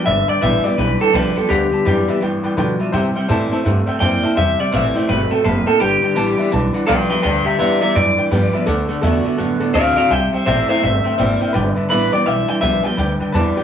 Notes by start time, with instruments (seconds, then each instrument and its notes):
0.06 upright bass G1, clean electric guitar G2 D3 E5, steel-string acoustic guitar G2, upright piano B4 D5 E5
0.28 clean electric guitar G2 D3 D5, upright piano B4 D5 G5, muted upright bass stroke
0.41 upright bass A1, clean electric guitar G2 E3 E5, steel-string acoustic guitar D3 G3 B3 G4, upright piano B4 D5 G5
0.63 clean electric guitar G2 E3 D5, steel-string acoustic guitar B3 G4, upright piano B4 D5 G5, muted upright bass stroke
0.77 upright bass B1, clean electric guitar G2 E3 B4, steel-string acoustic guitar D3, upright piano B4 D5 G5
0.99 clean electric guitar G2 E3 A4, upright piano B4 D5 G5, muted upright bass stroke
1.12 upright bass C2, clean electric guitar G2 F3 B4, steel-string acoustic guitar D3 G3 B3 G4, upright piano B4 D5 G5
1.36 clean electric guitar G2 F3 A4, steel-string acoustic guitar B3 G4, upright piano B4 D5 G5, muted upright bass stroke
1.49 upright bass D2, clean electric guitar G2 D3 G4, steel-string acoustic guitar G2, upright piano B4 D5 F#5
1.72 clean electric guitar G2 D3, upright piano B4 D5 A5, muted upright bass stroke
1.85 upright bass F#2, clean electric guitar G2 E3, steel-string acoustic guitar D3 G3 B3 G4, upright piano B4 D5 G5
2.08 clean electric guitar G2 E3, steel-string acoustic guitar B3 G4, upright piano B4 D5 E5, muted upright bass stroke
2.21 clean electric guitar G2 E3, upright bass G2, steel-string acoustic guitar A2, upright piano B4 D5 G5
2.43 clean electric guitar G2 E3, upright piano B4 D5 G5, muted upright bass stroke
2.57 clean electric guitar G2 F3, steel-string acoustic guitar B2, upright bass D3, upright piano B4 D5 G5
2.79 clean electric guitar G2 F3, upright piano B4 D5 E5, muted upright bass stroke
2.92 clean electric guitar C3 G3, steel-string acoustic guitar C3, upright bass C3, upright piano C5 E5 G5
3.15 clean electric guitar C3 G3, upright piano C5 E5 G5, muted upright bass stroke
3.28 upright bass A2, clean electric guitar C3 A3, steel-string acoustic guitar E3 G3 C4 E4, upright piano C5 E5 A5
3.51 clean electric guitar C3 A3, steel-string acoustic guitar C4 E4, upright piano C5 E5 A5, muted upright bass stroke
3.64 upright bass G2, steel-string acoustic guitar G2, clean electric guitar C3 A3, upright piano C5 E5 F#5
3.86 clean electric guitar C3 A3, upright piano C5 E5 G5, muted upright bass stroke
4.00 upright bass F#2, clean electric guitar C3 A#3 G5, steel-string acoustic guitar E3 G3 C4 E4, upright piano C5 E5 G5
4.23 clean electric guitar C3 A#3, steel-string acoustic guitar C4 E4, upright piano C5 E5 A5, muted upright bass stroke
4.35 upright bass E2, clean electric guitar C3 G3 E5, steel-string acoustic guitar C3, upright piano C5 E5 G5
4.59 clean electric guitar C3 G3 D5, upright piano C5 E5 G5, muted upright bass stroke
4.71 upright bass A1, clean electric guitar C3 A3 E5, steel-string acoustic guitar E3 G3 C4 E4, upright piano C5 E5 F#5
4.94 clean electric guitar C3 A3 D5, steel-string acoustic guitar C4 E4, upright piano C5 E5 G5, muted upright bass stroke
5.07 upright bass G1, steel-string acoustic guitar B2, clean electric guitar C3 A3 B4, upright piano C5 E5 G5
5.30 clean electric guitar C3 A3 A4, upright piano C5 E5 G5, muted upright bass stroke
5.43 upright bass F#1, steel-string acoustic guitar A2, clean electric guitar C3 A#3 B4, upright piano C5 E5 A5
5.65 clean electric guitar C3 A#3 A4, upright piano C5 E5 G5, muted upright bass stroke
5.79 upright bass G1, clean electric guitar G2 D3 G4, steel-string acoustic guitar G2, upright piano B4 D5 G5
6.02 clean electric guitar G2 D3, upright piano B4 D5 G5, muted upright bass stroke
6.15 upright bass A1, clean electric guitar G2 E3, steel-string acoustic guitar D3 G3 B3 G4, upright piano B4 D5 A5
6.37 clean electric guitar G2 E3, upright piano B4 D5 E5, muted upright bass stroke
6.51 upright bass B1, clean electric guitar G2 E3, steel-string acoustic guitar D3, upright piano B4 D5 A5
6.73 clean electric guitar G2 E3, upright piano B4 D5 F#5, muted upright bass stroke
6.87 upright bass C2, clean electric guitar G2 F3 B4 G5, steel-string acoustic guitar D3 G3 B3 G4, upright piano B4 D5 F#5
7.09 clean electric guitar G2 F3 B4 G5, steel-string acoustic guitar G4, upright piano B4 D5 E5, muted upright bass stroke
7.13 steel-string acoustic guitar B3
7.22 upright bass D2, clean electric guitar G2 D3 B4 G5, steel-string acoustic guitar G2, upright piano B4 D5 G5
7.45 clean electric guitar G2 D3 G4 E5, upright piano B4 D5 G5, muted upright bass stroke
7.58 upright bass E2, clean electric guitar G2 E3 G4 E5, steel-string acoustic guitar D3 G3 B3 G4, upright piano B4 D5 F#5
7.81 clean electric guitar G2 E3 G4 E5, steel-string acoustic guitar B3 G4, upright piano B4 D5 E5, muted upright bass stroke
7.95 upright bass F#2, clean electric guitar G2 E3 D5, steel-string acoustic guitar D3, upright piano B4 D5 G5
8.16 clean electric guitar G2 E3, upright piano B4 D5 G5, muted upright bass stroke
8.30 clean electric guitar G2 F3, upright bass G2, steel-string acoustic guitar D3 G3 B3 G4, upright piano B4 D5 G5
8.53 clean electric guitar G2 F3, steel-string acoustic guitar B3 G4, upright piano B4 D5 E5, muted upright bass stroke
8.66 upright bass D2, clean electric guitar D3 A3, steel-string acoustic guitar D3, upright piano A4 D5 F#5
8.88 clean electric guitar D3 A3, upright piano A4 D5 F#5, muted upright bass stroke
9.02 upright bass E2, clean electric guitar D3 B3, steel-string acoustic guitar D3 A3 D4 F#4, upright piano A4 D5 E5
9.24 clean electric guitar D3 B3, steel-string acoustic guitar D4 F#4, upright piano A4 D5 E5, muted upright bass stroke
9.37 upright bass F#2, steel-string acoustic guitar A2, clean electric guitar D3 B3, upright piano A4 D5 F#5
9.60 clean electric guitar D3 B3, upright piano A4 D5 F#5, muted upright bass stroke
9.73 upright bass D2, clean electric guitar D3 C4 D5 F5, steel-string acoustic guitar D3 A3 D4 F#4, upright piano A4 D5 A5
9.95 clean electric guitar D3 C4 D5 F5, steel-string acoustic guitar D4 F#4, upright piano A4 D5 F#5, muted upright bass stroke
10.10 upright bass C2, clean electric guitar C3 G3 E5 G5, steel-string acoustic guitar C3, upright piano C5 E5 G5
10.32 clean electric guitar C3 G3 C5 E5, upright piano C5 E5 G5, muted upright bass stroke
10.46 upright bass A1, clean electric guitar C3 A3 C5 E5, steel-string acoustic guitar E3 G3 C4 E4, upright piano C5 E5 G5
10.68 clean electric guitar C3 A3 C5 E5, steel-string acoustic guitar C4 E4, upright piano C5 E5 G5, muted upright bass stroke
10.81 upright bass G1, steel-string acoustic guitar G2, clean electric guitar C3 A3 E5, upright piano C5 E5 G5
11.04 clean electric guitar C3 A3, upright piano C5 E5 G5, muted upright bass stroke
11.18 upright bass G#1, clean electric guitar C3 A#3, steel-string acoustic guitar E3 G3 C4 E4, upright piano C5 E5 G5
11.40 clean electric guitar C3 A#3, steel-string acoustic guitar C4 E4, upright piano C5 E5 G5, muted upright bass stroke
11.53 upright bass G1, clean electric guitar G2 D3, steel-string acoustic guitar G2, upright piano B4 D5 G5
11.75 clean electric guitar G2 D3, upright piano B4 D5 E5, muted upright bass stroke
11.89 upright bass A1, clean electric guitar G2 E3 B4, steel-string acoustic guitar D3 G3 B3 G4, upright piano B4 D5 E5
12.12 clean electric guitar G2 E3 D5, steel-string acoustic guitar B3 G4, upright piano B4 D5 G5
12.26 upright bass B1, clean electric guitar G2 E3 E5, steel-string acoustic guitar D3, upright piano B4 D5 G5
12.48 clean electric guitar G2 E3 G5, upright piano B4 D5 E5
12.61 upright bass C2, clean electric guitar G2 F3 E5, steel-string acoustic guitar D3 G3 B3 G4, upright piano B4 D5 G5
12.83 clean electric guitar G2 F3 G5, steel-string acoustic guitar B3 G4, upright piano B4 D5 G5, muted upright bass stroke
12.97 upright bass D2, clean electric guitar G2 D3, steel-string acoustic guitar G2, upright piano B4 D5 G5
13.19 clean electric guitar G2 D3, upright piano B4 D5 G5, muted upright bass stroke
13.32 upright bass E2, clean electric guitar G2 E3, steel-string acoustic guitar D3 G3 B3, upright piano B4 D5 A5
13.36 steel-string acoustic guitar G4
13.56 clean electric guitar G2 E3, steel-string acoustic guitar B3 G4, upright piano B4 D5 G5